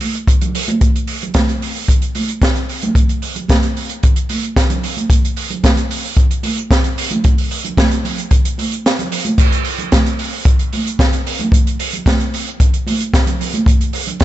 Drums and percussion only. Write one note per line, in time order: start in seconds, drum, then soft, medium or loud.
0.01 open hi-hat medium
0.01 high conga medium
0.15 closed hi-hat soft
0.27 kick loud
0.27 closed hi-hat medium
0.41 closed hi-hat soft
0.41 low conga medium
0.55 open hi-hat loud
0.68 closed hi-hat soft
0.68 high conga medium
0.81 kick loud
0.81 closed hi-hat medium
0.96 closed hi-hat soft
1.07 open hi-hat medium
1.22 closed hi-hat soft
1.22 low conga medium
1.34 kick loud
1.34 snare loud
1.34 closed hi-hat medium
1.34 high conga medium
1.49 closed hi-hat soft
1.62 open hi-hat medium
1.76 open hi-hat medium
1.88 kick medium
1.88 closed hi-hat medium
2.02 closed hi-hat soft
2.15 open hi-hat medium
2.15 high conga medium
2.29 closed hi-hat medium
2.42 kick loud
2.42 snare loud
2.42 closed hi-hat medium
2.56 closed hi-hat soft
2.69 open hi-hat medium
2.82 closed hi-hat medium
2.82 high conga medium
2.82 low conga medium
2.95 kick loud
2.95 closed hi-hat medium
3.09 closed hi-hat soft
3.22 open hi-hat medium
3.36 closed hi-hat medium
3.36 low conga medium
3.48 kick loud
3.48 snare loud
3.48 closed hi-hat medium
3.48 high conga medium
3.63 closed hi-hat soft
3.77 open hi-hat medium
3.89 closed hi-hat soft
4.03 kick loud
4.03 closed hi-hat medium
4.16 closed hi-hat medium
4.29 open hi-hat loud
4.29 high conga medium
4.43 closed hi-hat medium
4.56 kick loud
4.56 snare loud
4.56 closed hi-hat medium
4.70 closed hi-hat medium
4.70 low conga medium
4.83 open hi-hat medium
4.97 closed hi-hat medium
4.97 high conga medium
5.10 kick loud
5.10 closed hi-hat medium
5.25 closed hi-hat medium
5.37 open hi-hat medium
5.50 closed hi-hat medium
5.50 low conga medium
5.63 kick medium
5.63 snare loud
5.63 closed hi-hat medium
5.63 high conga medium
5.77 closed hi-hat soft
5.91 open hi-hat loud
6.05 open hi-hat medium
6.17 kick loud
6.17 closed hi-hat medium
6.31 closed hi-hat medium
6.43 open hi-hat loud
6.43 high conga medium
6.58 closed hi-hat medium
6.71 kick loud
6.71 snare loud
6.71 closed hi-hat medium
6.84 closed hi-hat medium
6.98 open hi-hat loud
7.11 closed hi-hat medium
7.11 high conga medium
7.11 low conga medium
7.24 kick loud
7.24 closed hi-hat medium
7.38 open hi-hat medium
7.51 open hi-hat loud
7.64 closed hi-hat medium
7.64 low conga medium
7.77 kick loud
7.77 snare loud
7.77 closed hi-hat medium
7.77 high conga medium
7.91 closed hi-hat medium
8.05 open hi-hat loud
8.05 low conga medium
8.18 closed hi-hat medium
8.31 kick loud
8.31 closed hi-hat medium
8.45 closed hi-hat medium
8.58 open hi-hat loud
8.58 high conga medium
8.72 closed hi-hat medium
8.86 snare loud
8.86 closed hi-hat medium
8.99 closed hi-hat medium
8.99 low conga medium
9.12 open hi-hat loud
9.25 closed hi-hat medium
9.25 high conga medium
9.38 kick loud
9.38 closed hi-hat medium
9.38 crash medium
9.52 closed hi-hat medium
9.64 open hi-hat medium
9.78 closed hi-hat medium
9.78 low conga medium
9.92 kick loud
9.92 snare loud
9.92 closed hi-hat medium
9.92 high conga medium
10.06 closed hi-hat medium
10.19 open hi-hat medium
10.33 open hi-hat medium
10.45 kick loud
10.45 closed hi-hat medium
10.59 closed hi-hat soft
10.73 open hi-hat medium
10.73 high conga medium
10.87 closed hi-hat medium
10.99 kick loud
10.99 snare loud
10.99 closed hi-hat medium
11.13 closed hi-hat medium
11.27 open hi-hat loud
11.39 closed hi-hat medium
11.39 high conga medium
11.39 low conga medium
11.52 kick loud
11.52 closed hi-hat medium
11.67 closed hi-hat soft
11.79 open hi-hat loud
11.93 closed hi-hat medium
11.93 low conga medium
12.06 kick loud
12.06 snare loud
12.06 closed hi-hat medium
12.06 high conga medium
12.20 closed hi-hat soft
12.34 open hi-hat loud
12.47 closed hi-hat soft
12.60 kick loud
12.60 closed hi-hat medium
12.74 closed hi-hat soft
12.87 open hi-hat loud
12.87 high conga medium
13.00 closed hi-hat medium
13.14 kick loud
13.14 snare loud
13.14 closed hi-hat medium
13.27 closed hi-hat medium
13.27 low conga medium
13.41 open hi-hat loud
13.54 closed hi-hat medium
13.54 high conga medium
13.66 kick loud
13.66 closed hi-hat medium
13.81 closed hi-hat soft
13.93 open hi-hat loud
14.07 closed hi-hat medium
14.07 low conga medium
14.20 kick loud
14.20 snare loud
14.20 closed hi-hat medium
14.20 high conga medium